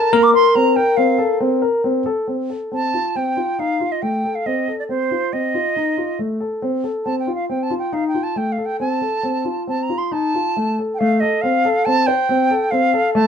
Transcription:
Already playing: A4 A5
0.13 A#3 A#4 A#5
0.23 D6
0.34 A#4 C6
0.55 C4 A#5
0.76 A#4 G5
0.97 C4 F5
1.18 A4
1.40 C4
1.62 A#4
1.84 C4
2.06 A4
2.28 C4
2.50 A4
2.72 C4 A5
2.94 F4
3.15 C4 G5
3.37 F4
3.59 D#4 F5
3.80 F4
3.92 D#5
4.02 A3 G5
4.24 A4
4.35 F5
4.46 C4 D#5
4.68 A4
4.79 D5
4.89 C4 C5
5.11 F4
5.33 C4 D#5
5.54 F4
5.76 D#4
5.97 F4
6.19 A3
6.40 A4
6.62 C4
6.84 A4
7.05 C4 A5
7.19 G5
7.27 F4
7.35 F5
7.49 C4 G5
7.63 A5
7.70 F4
7.79 G5
7.92 D#4 F5
8.08 G5
8.14 F4
8.23 A5
8.36 A3 G5
8.52 F5
8.58 A4
8.66 G5
8.80 C4 A5
9.01 A4
9.23 C4
9.45 F4
9.67 C4 A5
9.83 A#5
9.89 F4
9.98 C6
10.11 D#4 A5
10.35 F4
10.57 A3
10.79 A4
10.94 G5
10.99 A3 F5
11.20 A4 D#5
11.42 C4 F5
11.65 A4
11.85 C4 A5
12.07 C5 G5
12.29 C4
12.51 A4
12.71 C4 F5
12.93 A4
13.14 A3 A5

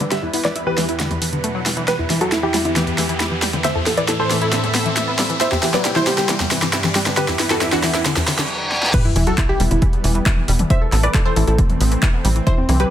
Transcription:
Already playing: G2 G3 D4 B4 D5, riser
0.00 D3, closed hi-hat, mid tom
0.11 E2 D3 E3 B3 G4 E5, snare, closed hi-hat
0.22 E2 E4
0.34 B3 E4, open hi-hat
0.45 E3 B4 D5, snare, closed hi-hat
0.56 E4, closed hi-hat
0.67 E3 G4 B4
0.78 E3 E4, snare, open hi-hat
0.89 E4, closed hi-hat
1.00 B2 D3 F#3 D4 F#5, snare, closed hi-hat
1.11 E2, closed hi-hat, mid tom
1.22 E3, open hi-hat
1.33 D3, closed hi-hat
1.44 A3, closed hi-hat
1.55 F#3
1.66 E3, snare, open hi-hat
1.77 E3, closed hi-hat
1.88 E2 E3 B3 G4 B4, snare, closed hi-hat
1.99 E2 E4
2.10 E3 E4, snare, open hi-hat
2.21 F#3 F#4 A4, closed hi-hat
2.32 E4, snare, closed hi-hat
2.43 E3 E4 G4
2.54 G3 E4, snare, open hi-hat
2.65 D3 E4, closed hi-hat
2.76 E3, snare, closed hi-hat
2.87 E2, closed hi-hat
2.98 E3, snare, open hi-hat
3.09 E3, closed hi-hat
3.20 E4, snare, closed hi-hat
3.31 E3
3.42 G3, snare, open hi-hat
3.53 D3, closed hi-hat, mid tom
3.64 A2 D3 C4 A4 C5 E5, snare, closed hi-hat
3.75 E2 A4
3.86 B3 A4, snare, open hi-hat
3.97 E3 B4 D5, closed hi-hat
4.08 E4 A4, snare, closed hi-hat
4.19 E3 A4 C5
4.30 E3 A4, snare, open hi-hat
4.41 E4 A4, closed hi-hat
4.53 D3, snare, closed hi-hat
4.64 E2, closed hi-hat, mid tom
4.75 B3, snare, open hi-hat
4.86 E3, closed hi-hat
4.97 E4, snare, closed hi-hat
5.08 B3
5.19 G3, snare, open hi-hat
5.30 E3, closed hi-hat
5.41 C3 E3 G3 E4 C5 E5 G5, snare, closed hi-hat
5.52 E2 G4, snare
5.63 E3 G4, snare, open hi-hat
5.74 F#3 B4 D5, snare, closed hi-hat
5.85 E4 G4, snare, closed hi-hat
5.96 E3 E4 C5, snare
6.07 G3 G4, snare, open hi-hat
6.18 D3 G4, snare, closed hi-hat
6.29 G2 E3 D4 B4 D5, snare, closed hi-hat
6.40 E2, snare, closed hi-hat
6.51 E3, snare, open hi-hat
6.62 E3, snare, closed hi-hat
6.73 E4, snare, closed hi-hat
6.84 E3, snare
6.95 G3, snare, open hi-hat
7.06 D3, snare, closed hi-hat, mid tom
7.17 E2 D3 E3 B3 G4 B4, snare, closed hi-hat
7.28 E2 E4, snare, closed hi-hat
7.39 B3 E4, snare, open hi-hat
7.50 E3 F#4 A4, snare, closed hi-hat
7.61 E4, snare, closed hi-hat, mid tom
7.72 E3 D4 F#4, snare, closed hi-hat
7.83 E3 E4, snare, open hi-hat
7.94 E4, snare, closed hi-hat
8.06 D3, snare, closed hi-hat, reverse cymbal
8.17 E2, snare, closed hi-hat, mid tom
8.28 D3, snare, open hi-hat
8.39 D3, snare, closed hi-hat
8.72 snare
8.83 snare
8.94 E3 G3 B3 G4 B4, kick, closed hi-hat, crash, sub drop
9.05 E2 E4
9.16 E1 E3 E4, open hi-hat
9.27 F#3 F#4 A4, closed hi-hat
9.38 E4, kick, clap, closed hi-hat
9.49 E3 E4 G4
9.60 E1 G3 E4, open hi-hat
9.71 E1 D3 E4, closed hi-hat
9.82 E3, kick, closed hi-hat
9.93 E2, closed hi-hat
10.04 E1 E3, open hi-hat
10.15 E3, closed hi-hat
10.26 E4, kick, clap, closed hi-hat
10.37 E3
10.48 E1 G3, open hi-hat
10.59 D3, closed hi-hat, mid tom
10.70 D3 A3 C4 C5 E5, kick, closed hi-hat
10.81 E2 A4
10.92 A1 B3 A4, clap, open hi-hat
11.03 E3 B4 D5, closed hi-hat
11.14 E4 A4, kick, clap, closed hi-hat
11.25 E3 A4 C5
11.36 A1 E3 A4, open hi-hat
11.47 A1 E4 A4, closed hi-hat
11.58 D3, kick, closed hi-hat
11.69 E2, closed hi-hat, mid tom
11.81 A1 B3, open hi-hat
11.92 E3, closed hi-hat
12.03 E4, kick, clap, closed hi-hat
12.14 B3
12.25 A1 G3, open hi-hat
12.36 E3, closed hi-hat
12.47 E3 G3 E4 C5, kick, closed hi-hat
12.58 E2 C4
12.69 C2 E3 C4, open hi-hat
12.80 F#3 G4 B4, closed hi-hat

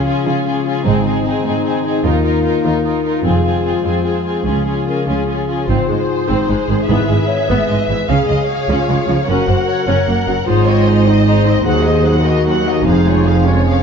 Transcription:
Already playing: C#3 F3 G#3 C#4 F4
0.06 C#4 F4 G#4
0.26 C#3 C#4 F4 G#4
0.45 C#4 F4 G#4
0.66 C#4 F4 G#4
0.85 G#1 G#2 C4 D#4 G#4
1.03 D#3 C4 D#4 G#4
1.24 C4 D#4 G#4
1.44 G#2 C4 D#4 G#4
1.64 C4 D#4 G#4
1.85 C4 D#4 G#4
2.03 D#2 D#3 A#3 D#4 F4 A#4
2.23 A#3 D#4 F4 A#4
2.43 D#4 F4 A#4
2.63 D#2 D#4 F4 A#4
2.84 D#4 F4 A#4
3.03 D#4 F4 A#4
3.23 F1 F2 F3 G#3 C4 F4 G#4
3.43 G#3 C4 F4 G#4
3.63 C4 F4 G#4
3.84 F2 C4 F4 G#4
4.04 C4 F4 G#4
4.25 C4 F4 G#4
4.45 C#2 C#3 C#4 F4 G#4
4.66 G#3 C#4 F4 G#4
4.86 C#4 F4 G#4 A#4
5.07 C#2 C#4 F4 G#4
5.28 C#4 F4 G#4
5.48 C#4 F4 G#4
5.68 G#1 G#2 C4 F4 G#4 C5
5.89 G#1 G#2 G#3 G#4
6.09 F#4
6.28 G#1 G#2 C4 D#4 G#4 C5
6.49 G#1 G#2 G#3 D#4
6.68 G#1 G#2 D#3 C4 D#4
6.88 G#1 G#2 B3 E4 B4 E5
7.08 G#1 G#2 G#3 G#4
7.27 F#4 C#5
7.49 G#1 G#2 B3 G#4 B4 E5
7.69 G#1 G#2 G#3 E4 D#5
7.88 G#1 G#2 E3 B3 E5
8.08 C#2 C#3 C#4 G#4 F5
8.29 C#2 C#3 G#3 G#4 D#5
8.49 F#4 C#5
8.69 C#2 C#3 C#4 F4 G#4
8.88 C#2 C#3 G#3 F4
9.08 C#2 C#3 F3 C#4 F4
9.28 F#1 F#2 C#4 F#4 A#4 F#5
9.48 F#1 F#2 A#3 A#4 C5
9.67 G#4 C#5
9.86 F#1 F#2 C#4 A#4 C#5
10.07 F#1 F#2 A#3 F#4
10.26 F#1 F#2 F#3 C#4
10.45 G#1 G#2 D#4 F4 G#4 C5
10.65 C4 G#4 C5 C#5 D#5
10.85 D#4 F#4 G#4 C5 D#5
11.06 C4 D#4 G#4 C5 D#5
11.25 D#4 G#4 C5
11.46 C4 D#4 C5 D#5
11.65 D#2 D#3 F#3 F#4 G#4 C5 F#5
11.86 A#3 D#4 A#4 D#5
12.05 F#3 F#4 G#4 F#5
12.23 A#3 D#4 F#4 A#4 D#5
12.46 F#3 F#4 F#5
12.65 A#3 D#4 D#5
12.84 F1 F2 F3 D#4 G#4 F5
13.06 G#3 F4 G#4 C#5
13.26 F3 F#4 G#4 F5
13.46 G#3 C#4 F4 G#4 C#5
13.67 F3 C#4 G#4 F5

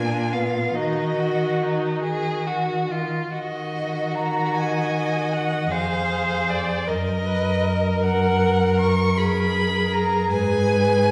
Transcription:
Already playing: A#2 D4 F4 G#5
0.33 B3 F5
0.76 D#3 D#4 F#4 D#5
1.20 F#4
1.63 D#4
2.04 G#4
2.47 F#4
2.91 F4
3.33 D#3 F#4 D#5
4.15 A#5
4.55 D#5 G#5
5.33 F#5
5.71 F2 G#4 C5 F5
6.50 D5
6.88 F#2 A#4 D#5
7.27 B4
7.66 A#4
8.04 F#5
8.80 C#6
9.17 G#4 B5
9.93 A#5
10.31 G#2 B4 G#5

